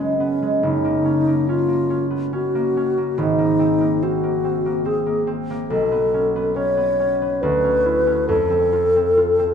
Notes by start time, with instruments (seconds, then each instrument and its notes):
Already playing: harp F#1 B3, alto flute C#4
0.00 harp G#3
0.17 harp B3, alto flute C#4
0.42 harp G#3
0.63 harp F#1, alto flute D#4
0.84 harp A#3
1.05 harp C#4
1.27 harp A#3
1.49 harp C#4, alto flute F4
1.69 harp A#3
1.90 harp C#4
2.10 harp B3
2.33 harp C#4, alto flute F#4
2.55 harp A#3
2.77 harp C#4
2.97 harp A#3
3.18 harp G#1, alto flute D#4
3.38 harp A#3
3.59 harp C4
3.80 harp A#3
4.02 harp C4, alto flute F#4
4.23 harp A#3
4.44 harp C4
4.66 harp A#3
4.85 harp C4, alto flute G#4
5.06 harp A#3
5.27 harp C4
5.50 harp A#3
5.70 harp B1, alto flute A4
5.91 harp B3
6.14 harp C#4
6.36 harp B3
6.56 harp C#4, alto flute C#5
6.77 harp B3
7.00 harp C#4
7.22 harp B3
7.41 harp D2, alto flute B4
7.64 harp C#4
7.86 harp E4
8.07 harp C#4
8.29 harp F2, alto flute A4
8.50 harp C4
8.73 harp F4
8.96 harp C4
9.17 harp F4
9.39 harp C4